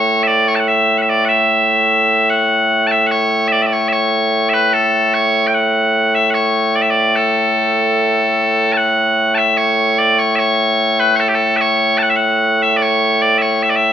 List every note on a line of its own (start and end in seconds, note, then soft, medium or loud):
0.00 13.93 A2 medium
0.00 13.93 A3 medium
0.00 0.23 C#5 loud
0.23 0.27 E5 medium
0.27 0.48 D5 medium
0.48 0.55 C#5 medium
0.55 0.59 A5 medium
0.59 0.68 F#5 medium
0.68 0.98 E5 medium
0.98 1.09 E5 medium
0.98 1.02 F#5 medium
1.09 1.25 D5 medium
1.25 2.30 E5 loud
1.25 1.29 F#5 loud
2.30 2.87 F#5 loud
2.87 2.91 A5 loud
2.91 3.07 E5 loud
3.07 3.11 F#5 medium
3.11 3.48 C#5 medium
3.48 3.52 E5 medium
3.52 3.62 D5 medium
3.62 3.66 E5 medium
3.66 3.73 D5 medium
3.73 3.88 C#5 medium
3.88 3.93 E5 medium
3.93 4.49 C#5 medium
4.49 4.54 E5 medium
4.54 4.73 B4 medium
4.73 5.14 A4 medium
5.14 5.47 C#5 medium
5.47 5.54 G5 medium
5.54 6.15 F#5 medium
6.15 6.30 E5 loud
6.30 6.75 C#5 medium
6.30 6.34 F#5 medium
6.75 6.82 D5 medium
6.82 6.90 E5 medium
6.90 7.16 D5 medium
7.16 8.73 A4 medium
8.73 8.77 A5 loud
8.77 9.34 F#5 loud
9.34 9.57 E5 loud
9.34 9.38 A5 loud
9.57 9.98 C#5 medium
9.98 10.19 D5 loud
10.19 10.35 C#5 medium
10.35 11.00 C#5 loud
10.35 10.39 E5 loud
11.00 11.16 B4 loud
11.16 11.20 C#5 medium
11.20 11.28 A4 medium
11.28 11.34 G4 medium
11.34 11.57 A4 loud
11.57 11.61 E5 loud
11.61 11.98 C#5 loud
11.98 12.02 A5 loud
12.02 12.10 F#5 loud
12.10 12.16 E5 medium
12.16 12.63 F#5 loud
12.63 12.77 E5 loud
12.77 12.82 D5 medium
12.82 13.22 C#5 loud
13.22 13.38 D5 loud
13.38 13.63 C#5 medium
13.38 13.42 E5 medium
13.63 13.70 E5 loud
13.70 13.76 D5 medium
13.76 13.93 E5 loud